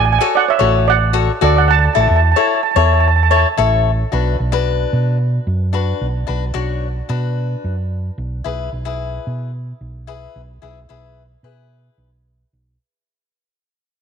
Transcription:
0.00 0.17 A1 loud
0.05 0.11 G#5 medium
0.13 0.18 G#5 medium
0.19 0.45 F#4 medium
0.19 0.45 A4 medium
0.19 0.45 C#5 medium
0.19 0.26 G#5 medium
0.35 0.48 D5 medium
0.35 0.49 F#5 loud
0.48 0.85 C#5 medium
0.48 0.90 E5 loud
0.59 1.28 A1 loud
0.59 0.93 F#4 medium
0.59 0.93 A4 medium
0.59 0.93 C#5 medium
0.88 1.38 D5 medium
0.88 1.44 F#5 loud
1.13 1.31 F#4 medium
1.13 1.31 A4 medium
1.13 1.31 C#5 medium
1.41 1.87 D2 loud
1.41 1.74 F#4 medium
1.41 1.74 A4 medium
1.41 1.55 A4 medium
1.41 1.74 D5 medium
1.41 1.55 D5 medium
1.56 1.68 D5 medium
1.56 1.67 F#5 medium
1.68 1.75 F#5 medium
1.68 1.77 A5 loud
1.79 1.84 A5 medium
1.85 1.91 A5 medium
1.93 2.08 A1 loud
1.93 2.20 E4 medium
1.93 2.20 A4 medium
1.93 2.20 C#5 medium
1.93 1.99 A5 medium
2.01 2.07 A5 medium
2.08 2.32 E2 medium
2.08 2.14 A5 medium
2.16 2.22 A5 medium
2.24 2.30 A5 soft
2.32 2.37 A5 medium
2.36 2.60 E4 medium
2.36 2.61 A4 medium
2.36 2.60 C#5 medium
2.40 2.45 A5 medium
2.48 2.52 A5 medium
2.55 2.60 A5 medium
2.63 2.68 A5 medium
2.71 2.76 A5 medium
2.76 3.43 E2 medium
2.76 3.09 E4 medium
2.76 3.09 A4 medium
2.76 3.09 C#5 medium
2.76 2.83 A5 medium
2.86 2.91 A5 medium
2.93 2.98 A5 medium
3.00 3.05 A5 medium
3.08 3.13 A5 medium
3.16 3.21 A5 medium
3.23 3.28 A5 medium
3.30 3.47 E4 medium
3.30 3.47 A4 medium
3.30 3.47 C#5 medium
3.30 3.35 A5 medium
3.36 3.42 A5 medium
3.57 4.03 A1 loud
3.57 3.90 E4 medium
3.57 3.90 A4 medium
3.57 3.90 C#5 medium
4.12 4.35 B1 loud
4.12 4.36 D4 medium
4.12 4.36 F#4 medium
4.12 4.36 B4 medium
4.40 4.84 B1 medium
4.52 5.17 D4 medium
4.52 5.17 F#4 medium
4.52 5.17 B4 medium
4.93 5.38 B2 medium
5.47 5.92 F#2 medium
5.73 6.06 D4 medium
5.73 6.06 F#4 medium
5.73 6.06 B4 medium
6.01 6.24 B1 medium
6.27 6.51 B1 medium
6.27 6.44 D4 medium
6.27 6.44 F#4 medium
6.27 6.44 B4 medium
6.54 7.00 B1 medium
6.54 6.87 D4 medium
6.54 6.87 F#4 medium
6.54 6.87 C#5 medium
7.09 7.54 B2 medium
7.09 7.75 D4 medium
7.09 7.75 F#4 medium
7.09 7.75 B4 medium
7.64 8.09 F#2 medium
8.18 8.40 B1 medium
8.44 8.68 B1 medium
8.44 8.69 E4 medium
8.44 8.69 G#4 medium
8.44 8.69 B4 medium
8.72 9.17 B1 medium
8.85 9.50 E4 medium
8.85 9.51 G#4 medium
8.85 9.50 B4 medium
9.27 9.72 B2 medium
9.81 10.26 B1 medium
10.07 10.40 E4 medium
10.07 10.40 G#4 medium
10.07 10.41 B4 medium
10.36 10.58 B1 medium
10.62 10.85 B1 medium
10.62 10.79 E4 medium
10.62 10.79 G#4 medium
10.62 10.79 B4 medium
10.89 11.35 B1 medium
10.89 11.22 E4 medium
10.89 11.22 G#4 soft
10.89 11.22 B4 medium
11.43 11.88 B2 medium
11.43 12.09 E4 medium
11.43 12.09 G#4 medium
11.43 12.09 B4 medium
11.98 12.43 B1 medium
12.53 12.75 B1 medium

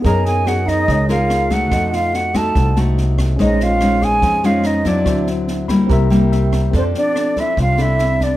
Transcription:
0.02 0.84 F#2 loud
0.02 0.86 F#3 medium
0.02 0.43 D#4 medium
0.02 1.67 G#4 soft
0.02 0.43 G#4 medium
0.02 0.23 A#4 medium
0.02 1.68 A#4 soft
0.02 0.25 A#5 loud
0.02 kick medium
0.02 snare soft
0.06 0.44 A#4 medium
0.06 1.69 D#5 soft
0.06 1.70 G#5 medium
0.24 0.47 G#4 medium
0.24 0.49 G#5 loud
0.24 snare soft
0.45 1.06 D#4 medium
0.45 0.67 F#4 medium
0.45 1.06 G#4 medium
0.45 1.06 A#4 medium
0.45 0.70 F#5 medium
0.45 cross-stick medium
0.45 snare soft
0.66 1.08 D#4 medium
0.66 1.10 D#5 loud
0.66 kick soft
0.66 snare soft
0.88 1.72 C#2 loud
0.88 1.70 C#3 medium
0.88 kick medium
0.88 snare soft
1.08 1.47 D#4 medium
1.08 1.52 F4 medium
1.08 1.47 G#4 medium
1.08 1.48 A#4 medium
1.08 1.54 F5 medium
1.08 snare soft
1.30 cross-stick medium
1.30 snare soft
1.50 2.31 A3 medium
1.50 2.31 D#4 medium
1.50 1.94 F#4 medium
1.50 1.97 F#5 loud
1.50 kick soft
1.50 snare soft
1.71 2.51 F2 loud
1.71 2.53 F3 medium
1.71 3.35 A4 soft
1.71 3.36 D#5 soft
1.71 kick medium
1.71 cross-stick medium
1.71 snare soft
1.75 3.37 F#5 medium
1.92 2.15 F4 medium
1.92 2.17 F5 loud
1.92 snare soft
2.13 2.35 F#4 medium
2.13 2.38 F#5 medium
2.13 snare soft
2.34 2.73 A3 medium
2.34 2.73 D#4 medium
2.34 2.73 F#4 medium
2.34 2.76 A4 medium
2.34 2.77 A5 medium
2.34 kick soft
2.34 cross-stick medium
2.34 snare soft
2.55 3.39 C2 loud
2.55 3.37 C3 medium
2.55 kick medium
2.55 snare soft
2.76 3.36 A3 medium
2.76 3.36 D#4 medium
2.76 3.36 F#4 medium
2.76 snare soft
2.98 snare soft
3.18 kick soft
3.18 cross-stick medium
3.18 snare soft
3.36 4.19 A#1 loud
3.36 4.21 A#2 medium
3.36 3.77 G#3 medium
3.36 5.02 C#4 medium
3.36 3.78 C#4 medium
3.36 3.63 D#4 medium
3.36 3.78 D#4 medium
3.36 5.02 G#4 soft
3.36 5.04 C5 soft
3.36 kick medium
3.36 snare soft
3.42 5.04 D#5 medium
3.42 3.65 D#5 medium
3.60 4.04 F4 medium
3.60 4.06 F5 loud
3.60 snare soft
3.80 4.40 G#3 medium
3.80 4.40 C#4 medium
3.80 4.41 D#4 medium
3.80 cross-stick medium
3.80 snare soft
4.02 4.46 G#4 loud
4.02 4.47 G#5 loud
4.02 kick soft
4.02 snare soft
4.22 5.06 F2 medium
4.22 5.04 F3 medium
4.22 kick medium
4.22 snare soft
4.43 4.82 G#3 medium
4.43 4.82 C#4 medium
4.43 4.83 D#4 medium
4.43 4.67 F4 medium
4.43 4.68 F5 medium
4.43 snare soft
4.64 4.87 D#4 medium
4.64 4.89 D#5 medium
4.64 cross-stick medium
4.64 snare soft
4.85 5.65 F#3 medium
4.85 5.66 C4 medium
4.85 5.27 D4 medium
4.85 5.66 E4 medium
4.85 5.28 D5 medium
4.85 kick soft
4.85 snare soft
5.03 5.86 D2 loud
5.03 5.88 D3 medium
5.03 5.86 D4 medium
5.03 5.88 F#4 soft
5.03 kick medium
5.03 cross-stick medium
5.03 snare soft
5.07 5.89 C5 soft
5.07 5.90 E5 medium
5.27 snare soft
5.48 snare soft
5.68 6.08 G3 medium
5.68 6.08 A#3 medium
5.68 6.08 E4 medium
5.68 5.88 B5 medium
5.68 kick soft
5.68 cross-stick medium
5.68 snare soft
5.87 6.70 C2 loud
5.87 6.71 C3 medium
5.87 6.70 C4 medium
5.87 6.71 G4 medium
5.87 6.72 A#4 medium
5.87 6.09 A#5 medium
5.87 kick medium
5.87 snare soft
5.93 6.31 E5 medium
6.10 6.70 G3 medium
6.10 6.70 A#3 medium
6.10 6.71 E4 medium
6.10 6.30 G5 medium
6.10 snare soft
6.32 6.71 E5 medium
6.32 snare soft
6.52 kick soft
6.52 cross-stick medium
6.52 snare soft
6.71 6.93 F2 medium
6.71 7.55 F3 medium
6.71 8.37 C4 soft
6.71 7.33 C4 medium
6.71 8.37 D4 soft
6.71 7.33 D4 medium
6.71 7.33 A4 medium
6.71 8.37 A4 soft
6.71 kick medium
6.71 snare soft
6.75 6.81 C4 medium
6.75 6.84 C5 medium
6.75 8.37 D5 medium
6.94 7.40 D4 medium
6.94 snare soft
6.98 7.41 D5 medium
7.16 cross-stick medium
7.16 snare soft
7.36 7.75 C4 medium
7.36 7.75 D4 medium
7.36 7.58 E4 medium
7.36 7.75 A4 medium
7.36 7.59 E5 medium
7.36 kick soft
7.36 snare soft
7.57 8.37 C2 medium
7.57 8.37 C3 medium
7.57 7.80 F4 medium
7.57 kick medium
7.57 snare soft
7.61 7.83 F5 loud
7.78 8.37 C4 medium
7.78 8.37 D4 medium
7.78 8.22 E4 medium
7.78 8.37 A4 medium
7.78 8.25 E5 loud
7.78 snare soft
7.99 cross-stick medium
7.99 snare soft
8.20 8.37 D4 medium
8.20 8.37 D5 medium
8.20 kick soft
8.20 snare soft

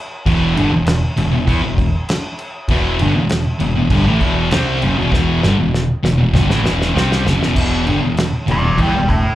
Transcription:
0.26 0.55 E1 loud
0.26 0.55 E2 medium
0.26 0.56 B2 loud
0.26 0.56 E3 loud
0.26 kick loud
0.26 crash loud
0.55 0.71 G1 medium
0.55 0.70 G2 medium
0.55 0.71 D3 loud
0.55 crash medium
0.72 1.01 E1 medium
0.72 0.96 E2 medium
0.72 0.96 B2 medium
0.86 snare loud
0.86 crash medium
1.17 1.32 E1 medium
1.17 1.31 E2 medium
1.17 1.30 B2 medium
1.17 crash medium
1.32 1.47 E1 medium
1.32 1.48 E2 medium
1.32 1.47 B2 medium
1.47 1.62 E2 loud
1.47 1.62 E3 medium
1.47 1.62 B3 loud
1.47 kick medium
1.47 crash medium
1.63 1.93 E1 medium
1.63 1.87 E2 medium
1.63 1.88 B2 medium
1.78 kick medium
1.78 crash medium
2.09 snare loud
2.09 crash medium
2.39 crash medium
2.68 2.97 E1 loud
2.68 2.99 E2 loud
2.68 3.00 B2 loud
2.68 3.00 E3 loud
2.68 kick loud
2.68 crash medium
2.99 3.15 G1 loud
2.99 3.14 G2 loud
2.99 3.15 D3 loud
2.99 crash medium
3.15 3.44 E1 medium
3.15 3.40 E2 medium
3.15 3.40 B2 medium
3.29 snare loud
3.29 crash medium
3.60 3.75 E1 medium
3.60 3.75 E2 medium
3.60 3.75 B2 medium
3.60 crash medium
3.76 3.90 E1 medium
3.76 3.90 E2 medium
3.76 3.91 B2 medium
3.90 4.05 G1 loud
3.90 4.05 G2 medium
3.90 4.06 D3 loud
3.90 kick medium
3.90 crash medium
4.06 4.21 A1 loud
4.06 4.21 A2 medium
4.06 4.21 E3 loud
4.21 4.50 E1 medium
4.21 4.51 E2 medium
4.21 4.50 B2 medium
4.21 4.51 E3 medium
4.21 kick medium
4.21 crash medium
4.50 4.81 C2 loud
4.50 4.81 C3 loud
4.50 4.81 G3 loud
4.50 4.82 C4 loud
4.50 snare loud
4.50 crash medium
4.81 4.97 F#1 medium
4.81 4.96 F#2 loud
4.81 4.97 C#3 loud
4.81 crash medium
4.97 5.11 E1 medium
4.97 5.11 E2 loud
4.97 5.12 B2 loud
5.12 5.41 E1 loud
5.12 5.42 E2 loud
5.12 5.43 B2 loud
5.12 5.43 E3 loud
5.12 kick loud
5.12 snare medium
5.42 5.57 G1 medium
5.42 5.57 G2 loud
5.42 5.58 D3 loud
5.42 snare medium
5.58 5.87 E1 medium
5.58 5.83 E2 medium
5.58 5.83 B2 medium
5.74 snare medium
6.03 6.18 E1 medium
6.03 6.17 E2 medium
6.03 6.18 B2 medium
6.03 snare medium
6.18 6.33 E1 medium
6.18 6.33 E2 medium
6.18 6.34 B2 medium
6.33 6.49 G1 loud
6.33 6.48 G2 medium
6.33 6.48 D3 loud
6.33 kick medium
6.33 snare loud
6.48 6.64 A1 loud
6.48 6.63 A2 medium
6.48 6.63 E3 medium
6.48 snare medium
6.62 6.93 E1 medium
6.62 6.93 E2 medium
6.62 6.93 B2 medium
6.62 6.94 E3 loud
6.62 snare medium
6.82 snare medium
6.94 7.24 C2 medium
6.94 7.24 C3 loud
6.94 7.25 G3 medium
6.94 7.25 C4 loud
6.94 snare loud
7.12 snare medium
7.25 7.40 F#1 loud
7.25 7.39 F#2 medium
7.25 7.40 C#3 medium
7.25 snare medium
7.40 7.55 E1 loud
7.40 7.54 E2 medium
7.40 7.55 B2 loud
7.40 snare medium
7.55 7.84 E1 loud
7.55 7.85 E2 medium
7.55 7.86 B2 loud
7.55 7.86 E3 loud
7.55 kick loud
7.55 crash loud
7.55 crash medium
7.86 8.01 G1 medium
7.86 8.01 G2 medium
7.86 8.01 D3 medium
7.86 crash medium
8.01 8.31 E1 medium
8.01 8.26 E2 medium
8.01 8.26 B2 medium
8.17 snare loud
8.17 crash medium
8.47 8.62 E1 medium
8.47 8.62 E2 medium
8.47 8.62 B2 medium
8.47 crash medium
8.51 8.80 B4 medium
8.51 8.80 D5 medium
8.63 8.77 E1 medium
8.63 8.78 E2 medium
8.63 8.78 B2 medium
8.78 8.92 E2 medium
8.78 8.93 E3 medium
8.78 8.94 B3 loud
8.78 9.08 D4 medium
8.78 9.10 B4 medium
8.78 kick medium
8.78 crash medium
8.95 9.23 E1 medium
8.95 9.19 E2 medium
8.95 9.19 B2 medium
9.09 9.35 E4 medium
9.09 9.35 A4 medium
9.09 kick medium
9.09 crash medium

